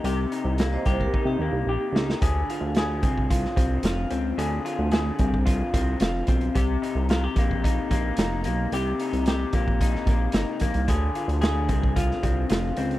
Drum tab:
HH |x-x-x-x---------|x-x-x-x-x-x-x-x-|x-x-x-x-x-x-x-xx|x-x-x-x-x-x-x-x-|
SD |----o---------oo|----o----o--o---|----o-------o---|----o-------o---|
BD |------ooo-------|o-----ooo-o-----|------ooo-o---o-|o-----ooo-o-----|

HH |x-xxx-x-x-x-x-xx|x-xxx-x-x-x-x-xx|
SD |----o----o--o---|----o----o--o---|
BD |------ooo-o---o-|o-----ooo-o-----|